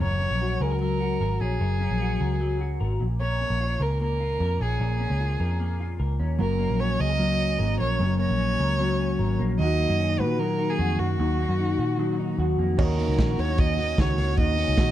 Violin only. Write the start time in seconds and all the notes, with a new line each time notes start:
0.02 C#5
0.62 A#4
0.81 A#4
1.41 G#4
3.21 C#5
3.82 A#4
4.02 A#4
4.62 G#4
6.40 A#4
6.80 C#5
7.00 D#5
7.80 C#5
8.20 C#5
9.60 D#5
10.20 B4
10.39 A#4
10.70 G#4
10.99 F#4
12.79 A#4
13.39 C#5
13.60 D#5
13.99 C#5
14.39 D#5